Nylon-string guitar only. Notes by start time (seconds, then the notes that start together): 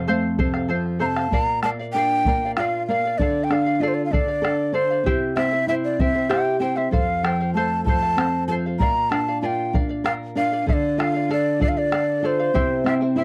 Already playing: F2
0.08 A3
0.39 C3
0.69 F3
1.00 C3
1.31 A#2
1.63 A#3
1.94 D4
2.27 A#3
2.57 F4
2.88 A#3
3.19 D3
3.50 D4
3.80 F4
4.11 D4
4.42 A4
4.73 D4
5.04 C3
5.36 C4
5.67 E4
6.00 C4
6.30 G4
6.60 C4
6.91 F2
7.23 F3
7.54 A3
7.85 F3
8.17 C4
8.48 F3
8.79 A#2
9.11 D4
9.42 F4
9.73 D4
10.04 A#4
10.35 D4
10.66 D3
10.98 F4
11.29 A4
11.60 F4
11.92 A4
12.22 F4
12.54 C3
12.84 C4
13.16 E4